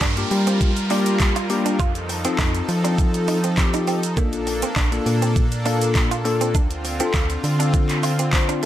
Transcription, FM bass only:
0, 0, Header, 1, 2, 480
1, 0, Start_track
1, 0, Key_signature, -2, "minor"
1, 0, Tempo, 594059
1, 1450, Time_signature, 4, 2, 24, 8
1, 6993, End_track
2, 0, Start_track
2, 0, Title_t, "FM bass"
2, 0, Program_c, 0, 39
2, 11, Note_on_c, 0, 43, 95
2, 198, Note_off_c, 0, 43, 0
2, 252, Note_on_c, 0, 55, 102
2, 1451, Note_on_c, 0, 41, 103
2, 1463, Note_off_c, 0, 55, 0
2, 1825, Note_off_c, 0, 41, 0
2, 1930, Note_on_c, 0, 41, 96
2, 2117, Note_off_c, 0, 41, 0
2, 2171, Note_on_c, 0, 53, 102
2, 3370, Note_on_c, 0, 34, 110
2, 3382, Note_off_c, 0, 53, 0
2, 3744, Note_off_c, 0, 34, 0
2, 3850, Note_on_c, 0, 34, 97
2, 4037, Note_off_c, 0, 34, 0
2, 4089, Note_on_c, 0, 46, 100
2, 5290, Note_on_c, 0, 38, 107
2, 5302, Note_off_c, 0, 46, 0
2, 5665, Note_off_c, 0, 38, 0
2, 5770, Note_on_c, 0, 38, 91
2, 5957, Note_off_c, 0, 38, 0
2, 6010, Note_on_c, 0, 50, 96
2, 6993, Note_off_c, 0, 50, 0
2, 6993, End_track
0, 0, End_of_file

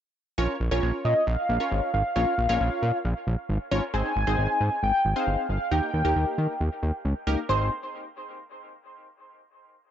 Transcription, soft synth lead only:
0, 0, Header, 1, 2, 480
1, 0, Start_track
1, 0, Key_signature, -4, "major"
1, 0, Tempo, 444444
1, 411, Time_signature, 4, 2, 24, 8
1, 10700, End_track
2, 0, Start_track
2, 0, Title_t, "Soft synth lead"
2, 0, Program_c, 0, 80
2, 1130, Note_on_c, 0, 75, 100
2, 1368, Note_on_c, 0, 77, 114
2, 1385, Note_off_c, 0, 75, 0
2, 2082, Note_off_c, 0, 77, 0
2, 2088, Note_on_c, 0, 77, 114
2, 3967, Note_off_c, 0, 77, 0
2, 4252, Note_on_c, 0, 80, 123
2, 5169, Note_off_c, 0, 80, 0
2, 5213, Note_on_c, 0, 79, 109
2, 5547, Note_off_c, 0, 79, 0
2, 5574, Note_on_c, 0, 77, 95
2, 5908, Note_off_c, 0, 77, 0
2, 5932, Note_on_c, 0, 77, 93
2, 6173, Note_on_c, 0, 79, 101
2, 6189, Note_off_c, 0, 77, 0
2, 7133, Note_off_c, 0, 79, 0
2, 8092, Note_on_c, 0, 84, 88
2, 8315, Note_off_c, 0, 84, 0
2, 10700, End_track
0, 0, End_of_file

